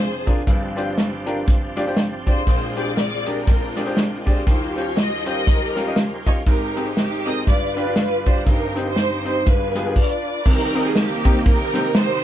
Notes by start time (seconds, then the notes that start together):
Already playing: F1 F2 F3 C4 D4 G#4 C5
0.26 D4 F4 G#4 A#4, kick, closed hi-hat
0.47 G1 G2 F3 A#3 D4 G4, kick, closed hi-hat
0.53 C4
0.76 D4 F4 G4 C5, closed hi-hat
0.98 snare, closed hi-hat
1.26 D4 F4 G4 A#4, closed hi-hat
1.48 kick, snare, closed hi-hat
1.76 D4 F4 G4 D5, snare, closed hi-hat
1.87 D4 F4 G4 C5
1.97 snare, closed hi-hat
2.27 D4 F4 G4 G#4 C5 D5, kick, closed hi-hat
2.47 A#1 A#2 G#3 C4 D4 A#4 G5, kick, closed hi-hat
2.77 D4 G4 G#4 C5 D5, closed hi-hat
2.97 D5, snare, closed hi-hat
3.26 D4 F4 G4 G#4 A#4 D5, closed hi-hat
3.47 kick, snare, closed hi-hat
3.76 D4 G4 G#4 D5, snare, closed hi-hat
3.86 D4 G4 G#4 C5
3.97 snare, closed hi-hat
4.26 D4 F4 G4 G#4 C5 D5, kick, closed hi-hat
4.46 D#2 D#3 G3 C#4 D#4 F4 C5, kick, closed hi-hat
4.76 C#4 F4 G4 C5 C#5, closed hi-hat
4.97 D#5, snare, closed hi-hat
5.26 C#4 F4 G4 A#4 C5 D#5, closed hi-hat
5.47 kick, snare, closed hi-hat
5.76 C#4 F4 G4 A#4, snare, closed hi-hat
5.86 C#4 F4 G4 D#5
5.96 snare, closed hi-hat
6.26 C#4 F4 G4 C#5 D#5, kick, closed hi-hat
6.47 G#1 G#2 G#3 A#3 D#4 G4 A#4, kick, closed hi-hat
6.53 C4
6.76 C4 G4 G#4 A#4, closed hi-hat
6.97 G4, snare, closed hi-hat
7.26 C4 G4 G#4 A#4 D#5, closed hi-hat
7.47 G1 G2 G3 D4 F4 B4 D5, kick, snare, closed hi-hat
7.76 D4 F4 G4 B4, closed hi-hat
7.86 D4 F4 G4 D5
7.96 B4, snare, closed hi-hat
8.26 D4 F4 G4 C5 D5, kick, closed hi-hat
8.45 G1 G2 G3 C4 D#4 G4 A#4 C5, kick, closed hi-hat
8.76 C4 D#4 G4 C5, closed hi-hat
8.87 D#4 G4 C5
8.96 snare, closed hi-hat
9.25 C4 D#4 G4 C5, closed hi-hat
9.45 G1 G2 G3 B3 D4 F4 G#4 B4, kick, snare, closed hi-hat
9.75 B3 F4 G4 G#4, snare, closed hi-hat
9.86 B3 F4 G4 G#4
9.96 F4 B4 D5, kick, crash
10.45 C2 C3 D#3 A#3 C4 D#4 G4 A#4, kick, crash
10.75 C4 D#4 G4 A#4, ride
10.86 G#4
10.96 A#3 D#4 G4, snare, ride
11.25 C4 D#4 G4 A#4, kick, ride
11.45 D#4 G4 A#4, kick, ride
11.74 C4 D#4 G4 C5, snare, ride
11.95 D#4 G4 C5, snare, ride